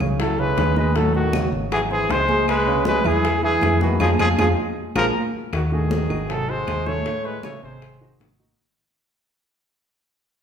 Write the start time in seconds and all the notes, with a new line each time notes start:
0.00 C#2 C#3 C#4 C#5, high conga, low conga, claves
0.19 E3 F#3 E4 A4 E5, high bongo, high conga
0.38 C#3 G#3 C#4 B4 C#5, high conga
0.57 D#2, high bongo, low bongo, high conga, claves
0.76 D#3 G#3 D#4 B4 D#5, high conga
0.95 A2 F#3 A3 A4, high bongo, high conga
1.14 D#3 F#4, high bongo, high conga
1.33 C#3 C#4 C#5, high bongo, high conga, claves
1.52 G#1, high conga
1.71 E3 F#3 F#4 G#4 F#5, high bongo, high conga, claves
1.91 E3 C4 G#4 C5 C6, high bongo, high conga
2.09 C#2 G#3 C5, high bongo, low bongo, high conga
2.29 G#3 G#4 G#5, high bongo, high conga
2.48 G#3 B4, high bongo, high conga, claves
2.67 C#3 C#4 C#5, high conga
2.85 G#3 B4, high bongo, high conga
3.04 E2 E3 E4 G#4 E5, high conga, low conga, claves
3.24 G#3 G#4 G#5, high bongo, high conga
3.43 E3 E4 G#4 E5, high conga
3.62 F2, high bongo, low bongo, high conga, claves
3.81 D#3 B3 F#4 B4 B5, high conga
4.00 F2 F3 D#4 F4 G#4, low bongo, high conga, claves
4.19 F2 F3 D#4 F4 G#4, low bongo, high conga, claves
4.38 F2 F3 D#4 F4 G#4, low bongo, high conga, claves
4.95 A#1 F3 F4 G#4 A#4, low bongo, high conga, claves
5.53 D#2 D#3 F#4, high bongo, high conga, claves
5.66 D#3 F#4
5.72 A2 D#3 A3 F#4 G#4, high conga
5.91 high bongo, high conga
6.10 G#1 D#3 D#4 F#4, high conga, claves
6.29 C3 F#3 C4 A4 C5, high bongo, high conga
6.48 D#3 G#3 D#4 F#4 C5, high conga
6.67 D#2, high bongo, low bongo, high conga, claves
6.86 A2 A3 A4 C#5, high conga
7.06 A2 A3 A4, high bongo, high conga
7.24 G#3 B4, high bongo, high conga
7.43 C#3 A3 C#4 D#4 C#5, high bongo, high conga, claves
7.63 G#1 C3 G#3 C4 C5, high conga
7.82 high bongo, high conga, claves
8.01 D#3 D#4 F#4, high bongo, high conga
8.20 G#1 D#3 D#4 F#4, high bongo, low bongo, high conga
8.40 D#3 D#4 F#4, high bongo